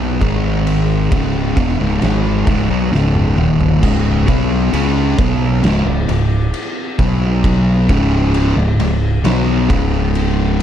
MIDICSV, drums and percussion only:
0, 0, Header, 1, 2, 480
1, 0, Start_track
1, 0, Tempo, 903614
1, 112, Time_signature, 4, 2, 24, 8
1, 5646, End_track
2, 0, Start_track
2, 0, Title_t, "Drums"
2, 114, Note_on_c, 9, 36, 104
2, 116, Note_on_c, 9, 51, 97
2, 167, Note_off_c, 9, 36, 0
2, 169, Note_off_c, 9, 51, 0
2, 355, Note_on_c, 9, 51, 81
2, 408, Note_off_c, 9, 51, 0
2, 594, Note_on_c, 9, 36, 118
2, 595, Note_on_c, 9, 51, 114
2, 647, Note_off_c, 9, 36, 0
2, 648, Note_off_c, 9, 51, 0
2, 833, Note_on_c, 9, 36, 126
2, 834, Note_on_c, 9, 51, 84
2, 886, Note_off_c, 9, 36, 0
2, 887, Note_off_c, 9, 51, 0
2, 1072, Note_on_c, 9, 51, 118
2, 1080, Note_on_c, 9, 38, 124
2, 1125, Note_off_c, 9, 51, 0
2, 1133, Note_off_c, 9, 38, 0
2, 1313, Note_on_c, 9, 36, 112
2, 1313, Note_on_c, 9, 51, 82
2, 1366, Note_off_c, 9, 36, 0
2, 1366, Note_off_c, 9, 51, 0
2, 1562, Note_on_c, 9, 38, 64
2, 1615, Note_off_c, 9, 38, 0
2, 1674, Note_on_c, 9, 47, 76
2, 1727, Note_off_c, 9, 47, 0
2, 1796, Note_on_c, 9, 45, 91
2, 1849, Note_off_c, 9, 45, 0
2, 1915, Note_on_c, 9, 43, 108
2, 1968, Note_off_c, 9, 43, 0
2, 2034, Note_on_c, 9, 36, 104
2, 2034, Note_on_c, 9, 49, 115
2, 2087, Note_off_c, 9, 36, 0
2, 2087, Note_off_c, 9, 49, 0
2, 2274, Note_on_c, 9, 36, 111
2, 2274, Note_on_c, 9, 51, 92
2, 2327, Note_off_c, 9, 36, 0
2, 2327, Note_off_c, 9, 51, 0
2, 2515, Note_on_c, 9, 51, 122
2, 2568, Note_off_c, 9, 51, 0
2, 2755, Note_on_c, 9, 36, 122
2, 2755, Note_on_c, 9, 51, 92
2, 2808, Note_off_c, 9, 36, 0
2, 2808, Note_off_c, 9, 51, 0
2, 2994, Note_on_c, 9, 51, 123
2, 3002, Note_on_c, 9, 38, 120
2, 3047, Note_off_c, 9, 51, 0
2, 3055, Note_off_c, 9, 38, 0
2, 3234, Note_on_c, 9, 51, 95
2, 3287, Note_off_c, 9, 51, 0
2, 3473, Note_on_c, 9, 51, 107
2, 3526, Note_off_c, 9, 51, 0
2, 3713, Note_on_c, 9, 36, 117
2, 3713, Note_on_c, 9, 51, 75
2, 3721, Note_on_c, 9, 38, 33
2, 3766, Note_off_c, 9, 36, 0
2, 3766, Note_off_c, 9, 51, 0
2, 3774, Note_off_c, 9, 38, 0
2, 3953, Note_on_c, 9, 36, 103
2, 3954, Note_on_c, 9, 51, 112
2, 4006, Note_off_c, 9, 36, 0
2, 4007, Note_off_c, 9, 51, 0
2, 4193, Note_on_c, 9, 36, 112
2, 4193, Note_on_c, 9, 51, 78
2, 4246, Note_off_c, 9, 36, 0
2, 4246, Note_off_c, 9, 51, 0
2, 4432, Note_on_c, 9, 51, 108
2, 4485, Note_off_c, 9, 51, 0
2, 4673, Note_on_c, 9, 51, 86
2, 4726, Note_off_c, 9, 51, 0
2, 4912, Note_on_c, 9, 51, 120
2, 4920, Note_on_c, 9, 38, 127
2, 4965, Note_off_c, 9, 51, 0
2, 4973, Note_off_c, 9, 38, 0
2, 5152, Note_on_c, 9, 36, 125
2, 5154, Note_on_c, 9, 51, 87
2, 5205, Note_off_c, 9, 36, 0
2, 5207, Note_off_c, 9, 51, 0
2, 5393, Note_on_c, 9, 51, 98
2, 5446, Note_off_c, 9, 51, 0
2, 5646, End_track
0, 0, End_of_file